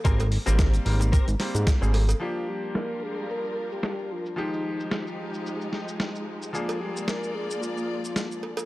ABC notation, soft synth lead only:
X:1
M:4/4
L:1/16
Q:"Swing 16ths" 1/4=111
K:Gphr
V:1 name="Soft synth lead"
z16 | F2 G2 B2 A2 B3 G3 F2 | E8 z8 | F2 G2 B2 A2 F8 |]